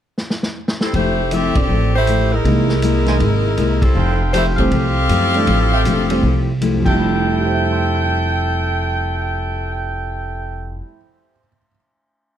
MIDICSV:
0, 0, Header, 1, 7, 480
1, 0, Start_track
1, 0, Key_signature, -1, "major"
1, 0, Tempo, 378310
1, 1190, Time_signature, 4, 2, 24, 8
1, 15703, End_track
2, 0, Start_track
2, 0, Title_t, "Trumpet section"
2, 0, Program_c, 0, 61
2, 3887, Note_on_c, 0, 70, 65
2, 3889, Note_on_c, 0, 76, 67
2, 3889, Note_on_c, 0, 80, 76
2, 3891, Note_on_c, 0, 72, 71
2, 4005, Note_off_c, 0, 70, 0
2, 4007, Note_off_c, 0, 76, 0
2, 4007, Note_off_c, 0, 80, 0
2, 4008, Note_off_c, 0, 72, 0
2, 5013, Note_on_c, 0, 79, 94
2, 5014, Note_on_c, 0, 72, 69
2, 5016, Note_on_c, 0, 69, 75
2, 5016, Note_on_c, 0, 77, 76
2, 6357, Note_off_c, 0, 79, 0
2, 6358, Note_off_c, 0, 72, 0
2, 6359, Note_off_c, 0, 69, 0
2, 6359, Note_off_c, 0, 77, 0
2, 7253, Note_on_c, 0, 76, 80
2, 7256, Note_on_c, 0, 69, 79
2, 7256, Note_on_c, 0, 79, 90
2, 7257, Note_on_c, 0, 77, 73
2, 7369, Note_off_c, 0, 76, 0
2, 7371, Note_off_c, 0, 69, 0
2, 7371, Note_off_c, 0, 77, 0
2, 7371, Note_off_c, 0, 79, 0
2, 8693, Note_on_c, 0, 69, 83
2, 8694, Note_on_c, 0, 79, 98
2, 8698, Note_on_c, 0, 76, 70
2, 13723, Note_off_c, 0, 69, 0
2, 13724, Note_off_c, 0, 79, 0
2, 13726, Note_off_c, 0, 76, 0
2, 15703, End_track
3, 0, Start_track
3, 0, Title_t, "Saxophone section"
3, 0, Program_c, 1, 65
3, 1040, Note_on_c, 1, 55, 53
3, 1043, Note_on_c, 1, 60, 53
3, 1045, Note_on_c, 1, 64, 55
3, 1045, Note_on_c, 1, 69, 65
3, 1188, Note_off_c, 1, 55, 0
3, 1190, Note_off_c, 1, 60, 0
3, 1191, Note_off_c, 1, 69, 0
3, 1192, Note_off_c, 1, 64, 0
3, 1210, Note_on_c, 1, 67, 63
3, 1210, Note_on_c, 1, 72, 77
3, 1212, Note_on_c, 1, 64, 62
3, 1213, Note_on_c, 1, 57, 66
3, 1646, Note_off_c, 1, 67, 0
3, 1646, Note_off_c, 1, 72, 0
3, 1648, Note_off_c, 1, 57, 0
3, 1648, Note_off_c, 1, 64, 0
3, 1687, Note_on_c, 1, 67, 73
3, 1687, Note_on_c, 1, 76, 78
3, 1688, Note_on_c, 1, 60, 77
3, 1688, Note_on_c, 1, 69, 80
3, 1985, Note_off_c, 1, 69, 0
3, 1988, Note_off_c, 1, 60, 0
3, 1988, Note_off_c, 1, 67, 0
3, 1988, Note_off_c, 1, 76, 0
3, 2001, Note_on_c, 1, 69, 70
3, 2002, Note_on_c, 1, 60, 65
3, 2004, Note_on_c, 1, 74, 69
3, 2005, Note_on_c, 1, 67, 65
3, 2468, Note_off_c, 1, 67, 0
3, 2469, Note_off_c, 1, 69, 0
3, 2470, Note_off_c, 1, 60, 0
3, 2471, Note_off_c, 1, 74, 0
3, 2483, Note_on_c, 1, 64, 77
3, 2483, Note_on_c, 1, 67, 66
3, 2485, Note_on_c, 1, 57, 68
3, 2488, Note_on_c, 1, 72, 89
3, 2917, Note_off_c, 1, 64, 0
3, 2917, Note_off_c, 1, 67, 0
3, 2919, Note_off_c, 1, 57, 0
3, 2920, Note_off_c, 1, 72, 0
3, 2950, Note_on_c, 1, 70, 88
3, 2952, Note_on_c, 1, 56, 75
3, 2952, Note_on_c, 1, 63, 68
3, 2952, Note_on_c, 1, 64, 76
3, 4833, Note_off_c, 1, 64, 0
3, 4843, Note_on_c, 1, 55, 69
3, 4843, Note_on_c, 1, 60, 72
3, 4848, Note_on_c, 1, 64, 68
3, 4848, Note_on_c, 1, 69, 77
3, 4862, Note_off_c, 1, 70, 0
3, 4863, Note_off_c, 1, 56, 0
3, 4863, Note_off_c, 1, 63, 0
3, 5329, Note_off_c, 1, 55, 0
3, 5329, Note_off_c, 1, 60, 0
3, 5332, Note_off_c, 1, 64, 0
3, 5332, Note_off_c, 1, 69, 0
3, 5503, Note_on_c, 1, 64, 78
3, 5503, Note_on_c, 1, 72, 88
3, 5504, Note_on_c, 1, 67, 77
3, 5506, Note_on_c, 1, 57, 80
3, 5643, Note_off_c, 1, 64, 0
3, 5643, Note_off_c, 1, 72, 0
3, 5644, Note_off_c, 1, 67, 0
3, 5645, Note_off_c, 1, 57, 0
3, 5802, Note_on_c, 1, 77, 96
3, 5805, Note_on_c, 1, 60, 83
3, 5808, Note_on_c, 1, 67, 82
3, 5808, Note_on_c, 1, 69, 81
3, 8330, Note_off_c, 1, 77, 0
3, 8331, Note_off_c, 1, 60, 0
3, 8332, Note_off_c, 1, 67, 0
3, 8332, Note_off_c, 1, 69, 0
3, 15703, End_track
4, 0, Start_track
4, 0, Title_t, "Steel-string acoustic guitar"
4, 0, Program_c, 2, 25
4, 1190, Note_on_c, 2, 53, 46
4, 1201, Note_on_c, 2, 57, 50
4, 1212, Note_on_c, 2, 64, 45
4, 1221, Note_on_c, 2, 67, 48
4, 1516, Note_off_c, 2, 53, 0
4, 1522, Note_off_c, 2, 57, 0
4, 1528, Note_off_c, 2, 64, 0
4, 1532, Note_off_c, 2, 67, 0
4, 1671, Note_on_c, 2, 53, 57
4, 1677, Note_on_c, 2, 57, 52
4, 1688, Note_on_c, 2, 64, 53
4, 1689, Note_on_c, 2, 67, 52
4, 1996, Note_off_c, 2, 53, 0
4, 2000, Note_off_c, 2, 57, 0
4, 2005, Note_off_c, 2, 64, 0
4, 2006, Note_off_c, 2, 67, 0
4, 2153, Note_on_c, 2, 53, 43
4, 2169, Note_on_c, 2, 57, 42
4, 2182, Note_on_c, 2, 64, 41
4, 2192, Note_on_c, 2, 67, 44
4, 2477, Note_off_c, 2, 53, 0
4, 2485, Note_off_c, 2, 57, 0
4, 2492, Note_off_c, 2, 64, 0
4, 2497, Note_off_c, 2, 67, 0
4, 2633, Note_on_c, 2, 53, 46
4, 2639, Note_on_c, 2, 57, 57
4, 2650, Note_on_c, 2, 64, 60
4, 2656, Note_on_c, 2, 67, 53
4, 2957, Note_off_c, 2, 53, 0
4, 2960, Note_off_c, 2, 57, 0
4, 2965, Note_off_c, 2, 64, 0
4, 2968, Note_off_c, 2, 67, 0
4, 3107, Note_on_c, 2, 48, 47
4, 3121, Note_on_c, 2, 56, 47
4, 3135, Note_on_c, 2, 58, 55
4, 3140, Note_on_c, 2, 64, 49
4, 3434, Note_off_c, 2, 48, 0
4, 3441, Note_off_c, 2, 56, 0
4, 3448, Note_off_c, 2, 58, 0
4, 3450, Note_off_c, 2, 64, 0
4, 3585, Note_on_c, 2, 48, 63
4, 3598, Note_on_c, 2, 56, 61
4, 3605, Note_on_c, 2, 58, 60
4, 3612, Note_on_c, 2, 64, 71
4, 3913, Note_off_c, 2, 48, 0
4, 3919, Note_off_c, 2, 56, 0
4, 3923, Note_off_c, 2, 58, 0
4, 3926, Note_off_c, 2, 64, 0
4, 4054, Note_on_c, 2, 48, 47
4, 4066, Note_on_c, 2, 56, 50
4, 4075, Note_on_c, 2, 58, 40
4, 4088, Note_on_c, 2, 64, 52
4, 4387, Note_off_c, 2, 48, 0
4, 4393, Note_off_c, 2, 56, 0
4, 4398, Note_off_c, 2, 58, 0
4, 4404, Note_off_c, 2, 64, 0
4, 4532, Note_on_c, 2, 48, 59
4, 4544, Note_on_c, 2, 56, 56
4, 4554, Note_on_c, 2, 58, 59
4, 4562, Note_on_c, 2, 64, 64
4, 4866, Note_off_c, 2, 48, 0
4, 4872, Note_off_c, 2, 56, 0
4, 4877, Note_off_c, 2, 58, 0
4, 4881, Note_off_c, 2, 64, 0
4, 5008, Note_on_c, 2, 53, 46
4, 5018, Note_on_c, 2, 57, 45
4, 5025, Note_on_c, 2, 64, 52
4, 5040, Note_on_c, 2, 67, 57
4, 5344, Note_off_c, 2, 53, 0
4, 5349, Note_off_c, 2, 57, 0
4, 5352, Note_off_c, 2, 64, 0
4, 5360, Note_off_c, 2, 67, 0
4, 5497, Note_on_c, 2, 53, 56
4, 5504, Note_on_c, 2, 57, 60
4, 5514, Note_on_c, 2, 64, 53
4, 5515, Note_on_c, 2, 67, 64
4, 5828, Note_off_c, 2, 53, 0
4, 5832, Note_off_c, 2, 57, 0
4, 5837, Note_off_c, 2, 64, 0
4, 5837, Note_off_c, 2, 67, 0
4, 5976, Note_on_c, 2, 53, 41
4, 5986, Note_on_c, 2, 57, 42
4, 6001, Note_on_c, 2, 64, 46
4, 6008, Note_on_c, 2, 67, 41
4, 6308, Note_off_c, 2, 53, 0
4, 6313, Note_off_c, 2, 57, 0
4, 6320, Note_off_c, 2, 64, 0
4, 6324, Note_off_c, 2, 67, 0
4, 6457, Note_on_c, 2, 53, 57
4, 6470, Note_on_c, 2, 57, 56
4, 6470, Note_on_c, 2, 64, 61
4, 6476, Note_on_c, 2, 67, 66
4, 6788, Note_off_c, 2, 53, 0
4, 6795, Note_off_c, 2, 57, 0
4, 6795, Note_off_c, 2, 64, 0
4, 6798, Note_off_c, 2, 67, 0
4, 6946, Note_on_c, 2, 53, 54
4, 6955, Note_on_c, 2, 57, 58
4, 6970, Note_on_c, 2, 64, 61
4, 6978, Note_on_c, 2, 67, 63
4, 7273, Note_off_c, 2, 53, 0
4, 7278, Note_off_c, 2, 57, 0
4, 7285, Note_off_c, 2, 64, 0
4, 7289, Note_off_c, 2, 67, 0
4, 7429, Note_on_c, 2, 53, 60
4, 7441, Note_on_c, 2, 57, 67
4, 7448, Note_on_c, 2, 64, 65
4, 7454, Note_on_c, 2, 67, 65
4, 7755, Note_off_c, 2, 53, 0
4, 7761, Note_off_c, 2, 57, 0
4, 7764, Note_off_c, 2, 64, 0
4, 7767, Note_off_c, 2, 67, 0
4, 7906, Note_on_c, 2, 53, 46
4, 7922, Note_on_c, 2, 57, 44
4, 7934, Note_on_c, 2, 64, 51
4, 7943, Note_on_c, 2, 67, 57
4, 8233, Note_off_c, 2, 53, 0
4, 8241, Note_off_c, 2, 57, 0
4, 8247, Note_off_c, 2, 64, 0
4, 8252, Note_off_c, 2, 67, 0
4, 8389, Note_on_c, 2, 53, 55
4, 8399, Note_on_c, 2, 57, 57
4, 8407, Note_on_c, 2, 64, 65
4, 8413, Note_on_c, 2, 67, 56
4, 8643, Note_off_c, 2, 53, 0
4, 8658, Note_on_c, 2, 53, 55
4, 8703, Note_off_c, 2, 57, 0
4, 8707, Note_off_c, 2, 64, 0
4, 8710, Note_off_c, 2, 67, 0
4, 8718, Note_on_c, 2, 57, 71
4, 8772, Note_on_c, 2, 64, 63
4, 8819, Note_on_c, 2, 67, 70
4, 13714, Note_off_c, 2, 53, 0
4, 13774, Note_off_c, 2, 57, 0
4, 13828, Note_off_c, 2, 64, 0
4, 13875, Note_off_c, 2, 67, 0
4, 15703, End_track
5, 0, Start_track
5, 0, Title_t, "Grand piano"
5, 0, Program_c, 3, 0
5, 3096, Note_on_c, 3, 52, 45
5, 3103, Note_on_c, 3, 56, 39
5, 3111, Note_on_c, 3, 58, 44
5, 3119, Note_on_c, 3, 63, 53
5, 3380, Note_off_c, 3, 52, 0
5, 3384, Note_off_c, 3, 56, 0
5, 3388, Note_off_c, 3, 58, 0
5, 3392, Note_off_c, 3, 63, 0
5, 3878, Note_on_c, 3, 52, 52
5, 3887, Note_on_c, 3, 56, 45
5, 3894, Note_on_c, 3, 58, 44
5, 3904, Note_on_c, 3, 63, 54
5, 4040, Note_off_c, 3, 52, 0
5, 4045, Note_off_c, 3, 56, 0
5, 4048, Note_off_c, 3, 58, 0
5, 4053, Note_off_c, 3, 63, 0
5, 5803, Note_on_c, 3, 52, 57
5, 5812, Note_on_c, 3, 55, 51
5, 5824, Note_on_c, 3, 57, 53
5, 5830, Note_on_c, 3, 60, 67
5, 5962, Note_off_c, 3, 52, 0
5, 5967, Note_off_c, 3, 55, 0
5, 5973, Note_off_c, 3, 57, 0
5, 5976, Note_off_c, 3, 60, 0
5, 6769, Note_on_c, 3, 52, 47
5, 6780, Note_on_c, 3, 55, 45
5, 6783, Note_on_c, 3, 57, 49
5, 6795, Note_on_c, 3, 62, 58
5, 6925, Note_off_c, 3, 52, 0
5, 6931, Note_off_c, 3, 55, 0
5, 6933, Note_off_c, 3, 57, 0
5, 6939, Note_off_c, 3, 62, 0
5, 7734, Note_on_c, 3, 52, 51
5, 7739, Note_on_c, 3, 55, 48
5, 7746, Note_on_c, 3, 57, 48
5, 7757, Note_on_c, 3, 60, 62
5, 7888, Note_off_c, 3, 52, 0
5, 7891, Note_off_c, 3, 55, 0
5, 7894, Note_off_c, 3, 57, 0
5, 7900, Note_off_c, 3, 60, 0
5, 8545, Note_on_c, 3, 41, 48
5, 8624, Note_on_c, 3, 53, 52
5, 8704, Note_on_c, 3, 55, 51
5, 8783, Note_on_c, 3, 57, 45
5, 8861, Note_on_c, 3, 64, 62
5, 9359, Note_on_c, 3, 67, 39
5, 9454, Note_on_c, 3, 72, 36
5, 9562, Note_on_c, 3, 76, 35
5, 9802, Note_on_c, 3, 84, 32
5, 9941, Note_on_c, 3, 88, 28
5, 10084, Note_on_c, 3, 91, 28
5, 13602, Note_off_c, 3, 41, 0
5, 13680, Note_off_c, 3, 53, 0
5, 13760, Note_off_c, 3, 55, 0
5, 13839, Note_off_c, 3, 57, 0
5, 13917, Note_off_c, 3, 64, 0
5, 14365, Note_off_c, 3, 67, 0
5, 14460, Note_off_c, 3, 72, 0
5, 14567, Note_off_c, 3, 76, 0
5, 14790, Note_off_c, 3, 84, 0
5, 14859, Note_off_c, 3, 88, 0
5, 14931, Note_off_c, 3, 91, 0
5, 15703, End_track
6, 0, Start_track
6, 0, Title_t, "Upright bass"
6, 0, Program_c, 4, 32
6, 1186, Note_on_c, 4, 29, 68
6, 1926, Note_off_c, 4, 29, 0
6, 1972, Note_on_c, 4, 28, 59
6, 2133, Note_off_c, 4, 28, 0
6, 2144, Note_on_c, 4, 33, 72
6, 3057, Note_off_c, 4, 33, 0
6, 3103, Note_on_c, 4, 36, 75
6, 4016, Note_off_c, 4, 36, 0
6, 4053, Note_on_c, 4, 32, 85
6, 4506, Note_off_c, 4, 32, 0
6, 4538, Note_on_c, 4, 36, 69
6, 4988, Note_off_c, 4, 36, 0
6, 5014, Note_on_c, 4, 29, 81
6, 5932, Note_off_c, 4, 29, 0
6, 5976, Note_on_c, 4, 36, 80
6, 6427, Note_off_c, 4, 36, 0
6, 6466, Note_on_c, 4, 42, 68
6, 6912, Note_off_c, 4, 42, 0
6, 6942, Note_on_c, 4, 33, 71
6, 7390, Note_off_c, 4, 33, 0
6, 7420, Note_on_c, 4, 28, 73
6, 7869, Note_off_c, 4, 28, 0
6, 7903, Note_on_c, 4, 36, 82
6, 8656, Note_off_c, 4, 36, 0
6, 8697, Note_on_c, 4, 29, 73
6, 13702, Note_off_c, 4, 29, 0
6, 15703, End_track
7, 0, Start_track
7, 0, Title_t, "Drums"
7, 223, Note_on_c, 9, 38, 51
7, 350, Note_off_c, 9, 38, 0
7, 385, Note_on_c, 9, 38, 68
7, 512, Note_off_c, 9, 38, 0
7, 544, Note_on_c, 9, 38, 68
7, 671, Note_off_c, 9, 38, 0
7, 863, Note_on_c, 9, 38, 90
7, 990, Note_off_c, 9, 38, 0
7, 1023, Note_on_c, 9, 38, 83
7, 1150, Note_off_c, 9, 38, 0
7, 1186, Note_on_c, 9, 36, 28
7, 1188, Note_on_c, 9, 51, 50
7, 1313, Note_off_c, 9, 36, 0
7, 1315, Note_off_c, 9, 51, 0
7, 1663, Note_on_c, 9, 44, 53
7, 1663, Note_on_c, 9, 51, 61
7, 1790, Note_off_c, 9, 44, 0
7, 1790, Note_off_c, 9, 51, 0
7, 1971, Note_on_c, 9, 51, 60
7, 1973, Note_on_c, 9, 36, 60
7, 2097, Note_off_c, 9, 51, 0
7, 2099, Note_off_c, 9, 36, 0
7, 2628, Note_on_c, 9, 44, 54
7, 2628, Note_on_c, 9, 51, 50
7, 2755, Note_off_c, 9, 44, 0
7, 2755, Note_off_c, 9, 51, 0
7, 3105, Note_on_c, 9, 36, 30
7, 3111, Note_on_c, 9, 51, 53
7, 3232, Note_off_c, 9, 36, 0
7, 3238, Note_off_c, 9, 51, 0
7, 3411, Note_on_c, 9, 38, 43
7, 3538, Note_off_c, 9, 38, 0
7, 3580, Note_on_c, 9, 44, 59
7, 3580, Note_on_c, 9, 51, 65
7, 3707, Note_off_c, 9, 44, 0
7, 3707, Note_off_c, 9, 51, 0
7, 3887, Note_on_c, 9, 38, 46
7, 3887, Note_on_c, 9, 51, 37
7, 4014, Note_off_c, 9, 38, 0
7, 4014, Note_off_c, 9, 51, 0
7, 4059, Note_on_c, 9, 36, 30
7, 4062, Note_on_c, 9, 51, 51
7, 4185, Note_off_c, 9, 36, 0
7, 4189, Note_off_c, 9, 51, 0
7, 4535, Note_on_c, 9, 44, 45
7, 4535, Note_on_c, 9, 51, 52
7, 4662, Note_off_c, 9, 44, 0
7, 4662, Note_off_c, 9, 51, 0
7, 4848, Note_on_c, 9, 36, 73
7, 4850, Note_on_c, 9, 51, 68
7, 4974, Note_off_c, 9, 36, 0
7, 4977, Note_off_c, 9, 51, 0
7, 5504, Note_on_c, 9, 44, 60
7, 5504, Note_on_c, 9, 51, 64
7, 5631, Note_off_c, 9, 44, 0
7, 5631, Note_off_c, 9, 51, 0
7, 5811, Note_on_c, 9, 36, 38
7, 5813, Note_on_c, 9, 51, 36
7, 5938, Note_off_c, 9, 36, 0
7, 5940, Note_off_c, 9, 51, 0
7, 5981, Note_on_c, 9, 36, 27
7, 5982, Note_on_c, 9, 51, 50
7, 6108, Note_off_c, 9, 36, 0
7, 6109, Note_off_c, 9, 51, 0
7, 6461, Note_on_c, 9, 44, 52
7, 6461, Note_on_c, 9, 51, 62
7, 6588, Note_off_c, 9, 44, 0
7, 6588, Note_off_c, 9, 51, 0
7, 6776, Note_on_c, 9, 51, 42
7, 6903, Note_off_c, 9, 51, 0
7, 6941, Note_on_c, 9, 51, 59
7, 6944, Note_on_c, 9, 36, 26
7, 7068, Note_off_c, 9, 51, 0
7, 7071, Note_off_c, 9, 36, 0
7, 7425, Note_on_c, 9, 44, 57
7, 7425, Note_on_c, 9, 51, 61
7, 7552, Note_off_c, 9, 44, 0
7, 7552, Note_off_c, 9, 51, 0
7, 7738, Note_on_c, 9, 51, 56
7, 7865, Note_off_c, 9, 51, 0
7, 7908, Note_on_c, 9, 36, 26
7, 8035, Note_off_c, 9, 36, 0
7, 8393, Note_on_c, 9, 44, 45
7, 8393, Note_on_c, 9, 51, 58
7, 8520, Note_off_c, 9, 44, 0
7, 8520, Note_off_c, 9, 51, 0
7, 8699, Note_on_c, 9, 36, 53
7, 8702, Note_on_c, 9, 49, 55
7, 8826, Note_off_c, 9, 36, 0
7, 8829, Note_off_c, 9, 49, 0
7, 15703, End_track
0, 0, End_of_file